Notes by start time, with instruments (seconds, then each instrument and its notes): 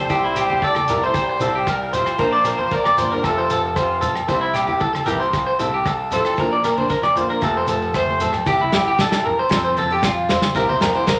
Already playing: trombone G3, horn section C5
0.09 grand piano C2, steel-string acoustic guitar G3 C4 E4 G4, clean electric guitar G4, kick, shekere
0.24 clean electric guitar E4
0.36 steel-string acoustic guitar G3 C4 E4 G4, clean electric guitar G4, cross-stick, closed hi-hat, low agogo, shekere
0.50 steel-string acoustic guitar C4 E4 G4, clean electric guitar G4, high conga
0.62 trombone G3, clean electric guitar A4, horn section D5, kick, shekere
0.75 clean electric guitar A4, cross-stick, high conga, low agogo
0.88 grand piano C2, steel-string acoustic guitar G3 C4 E4 G4, clean electric guitar A#4, closed hi-hat, low conga, shekere
1.02 trombone A3, steel-string acoustic guitar C4 E4 G4, clean electric guitar C5, horn section C5, shekere
1.14 horn section C5, kick, cross-stick, low agogo, shekere
1.19 trombone G3
1.29 clean electric guitar C5
1.40 grand piano C2, steel-string acoustic guitar G3 C4 E4 G4, clean electric guitar A4, closed hi-hat, shekere
1.55 clean electric guitar G4
1.67 trombone G3, horn section A#4, muted clean electric guitar stroke, kick, cross-stick, low agogo, shekere
1.93 steel-string acoustic guitar G3 C4 E4 G4, clean electric guitar C5, horn section C5, closed hi-hat, low conga, shekere
1.97 trombone F3
2.06 cross-stick, low agogo
2.18 grand piano A#1, steel-string acoustic guitar F3 A#3 D4 A#4, clean electric guitar A#4, kick, shekere
2.33 clean electric guitar D5
2.44 steel-string acoustic guitar F3 A#3 D4 A#4, clean electric guitar A#4, cross-stick, closed hi-hat, low agogo, shekere
2.58 steel-string acoustic guitar A#3 A#4, clean electric guitar C5, high conga
2.71 clean electric guitar A#4, horn section D5, kick, shekere
2.76 trombone A#3
2.84 clean electric guitar D5, cross-stick, high conga, low agogo
2.98 grand piano G1, steel-string acoustic guitar F3 A#3 D4 A#4, clean electric guitar C5, closed hi-hat, low conga, shekere
3.12 trombone G3, steel-string acoustic guitar A#3 D4 A#4, clean electric guitar A#4, horn section A#4, shekere
3.23 grand piano F1, steel-string acoustic guitar C4 F4 A4, clean electric guitar A4, kick, cross-stick, low agogo, shekere
3.27 trombone F3, horn section A4
3.38 clean electric guitar C5
3.50 grand piano F1, steel-string acoustic guitar C4 F4 A4, clean electric guitar A4, closed hi-hat, shekere
3.76 clean electric guitar C5, kick, cross-stick, low agogo, shekere
3.80 trombone C3, horn section F4
4.01 steel-string acoustic guitar C4 F4, clean electric guitar A4, closed hi-hat, low conga, shekere
4.05 steel-string acoustic guitar A4
4.15 cross-stick, low agogo, shekere
4.28 grand piano C2, steel-string acoustic guitar G3 C4 E4, clean electric guitar C5, kick, shekere
4.41 clean electric guitar E4
4.54 steel-string acoustic guitar G3 C4, clean electric guitar G4, muted steel-string acoustic guitar stroke, cross-stick, closed hi-hat, low agogo, shekere
4.67 steel-string acoustic guitar C4 E4, clean electric guitar G4, high conga
4.80 clean electric guitar A4, kick, shekere
4.93 clean electric guitar A4, cross-stick, high conga, low agogo
5.06 grand piano C2, steel-string acoustic guitar G3 C4 E4, horn section G4, clean electric guitar A#4, closed hi-hat, low conga, shekere
5.10 trombone E3
5.20 steel-string acoustic guitar C4 E4, clean electric guitar C5, shekere
5.33 kick, cross-stick, low agogo, shekere
5.47 clean electric guitar C5
5.59 grand piano C2, steel-string acoustic guitar G3 C4 E4, clean electric guitar A4, closed hi-hat, shekere
5.74 clean electric guitar G4
5.85 clean electric guitar A4, kick, cross-stick, low agogo, shekere
6.11 trombone F3, steel-string acoustic guitar G3 C4 E4, horn section A4, clean electric guitar C5, closed hi-hat, low conga, shekere
6.25 cross-stick, low agogo, shekere
6.37 grand piano A#1, steel-string acoustic guitar F3 A#3 D4, clean electric guitar A#4, kick, shekere
6.53 clean electric guitar D5
6.64 steel-string acoustic guitar F3 A#3 D4, clean electric guitar A#4, cross-stick, closed hi-hat, low agogo, shekere
6.78 steel-string acoustic guitar A#3 D4, clean electric guitar C5, high conga
6.89 clean electric guitar A#4, kick, shekere
7.03 clean electric guitar D5, cross-stick, high conga, low agogo
7.15 grand piano A#1, trombone D3, steel-string acoustic guitar F3 A#3 D4, horn section F4, clean electric guitar C5, closed hi-hat, low conga
7.29 steel-string acoustic guitar A#3 D4, clean electric guitar A#4, shekere
7.41 grand piano F1, steel-string acoustic guitar F3 A3 C4, trombone F3, clean electric guitar A4, kick, cross-stick, low agogo, shekere
7.45 horn section A4
7.57 clean electric guitar C5
7.67 grand piano F1, steel-string acoustic guitar F3 A3 C4, clean electric guitar A4, closed hi-hat, shekere
7.81 shekere
7.94 trombone A3, clean electric guitar C5, horn section C5, kick, cross-stick, high conga, low agogo, shekere
8.07 high conga
8.20 steel-string acoustic guitar F3 A3 C4, clean electric guitar A4, closed hi-hat, low conga, shekere
8.33 cross-stick, low conga, low agogo, shekere
8.46 grand piano C2, steel-string acoustic guitar C4 E4 G4, clean electric guitar G4, muted steel-string acoustic guitar stroke, kick, shekere
8.60 clean electric guitar E4, high conga
8.72 steel-string acoustic guitar G3 C4 E4, clean electric guitar G4, muted steel-string acoustic guitar stroke, snare, low conga, low agogo, shekere
8.85 steel-string acoustic guitar C4 E4 G4, clean electric guitar G4
8.98 clean electric guitar A4, kick, snare, shekere
9.12 steel-string acoustic guitar C4 E4 G4, clean electric guitar A4, snare, low agogo
9.26 clean electric guitar A#4, low conga
9.39 clean electric guitar C5
9.49 grand piano F2, steel-string acoustic guitar C4 F4 A4, muted steel-string acoustic guitar stroke, kick, snare, low agogo, shekere
9.65 clean electric guitar C5
9.77 steel-string acoustic guitar F3 C4 F4 A4, clean electric guitar A4, high conga, shekere
9.90 steel-string acoustic guitar F4 A4, clean electric guitar G4, muted steel-string acoustic guitar stroke
10.03 clean electric guitar F4, kick, snare, low agogo, shekere
10.29 steel-string acoustic guitar F3 C4 F4 A4, clean electric guitar C5, snare, low conga, shekere
10.42 snare, high conga, low agogo
10.55 grand piano C2, steel-string acoustic guitar G3 C4 E4 G4, clean electric guitar A#4, kick, shekere
10.69 clean electric guitar C5, high conga
10.80 steel-string acoustic guitar G3 E4, clean electric guitar A#4, snare, low conga, low agogo, shekere
10.95 steel-string acoustic guitar C4 E4 G4, clean electric guitar C5
11.07 clean electric guitar A#4, kick, snare, shekere